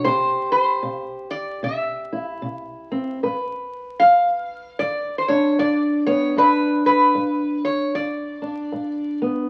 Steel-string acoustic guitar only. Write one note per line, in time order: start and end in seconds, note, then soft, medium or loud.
0.05 0.78 C3 medium
0.05 3.23 G4 medium
0.83 1.56 C3 medium
1.63 2.36 C3 medium
2.13 3.18 E4 medium
2.42 3.15 C3 medium
2.92 3.18 C4 medium
3.23 3.95 G2 medium
3.23 6.35 B4 medium
4.01 4.74 G2 medium
4.79 5.52 G2 medium
5.29 6.37 D4 soft
5.59 6.32 G2 medium
6.07 6.34 B3 medium
6.36 7.10 G2 medium
6.36 8.41 D4 medium
7.15 7.89 G2 medium
7.95 8.69 G2 medium
8.42 9.49 D4 medium
8.72 9.47 G2 medium
9.22 9.49 B3 medium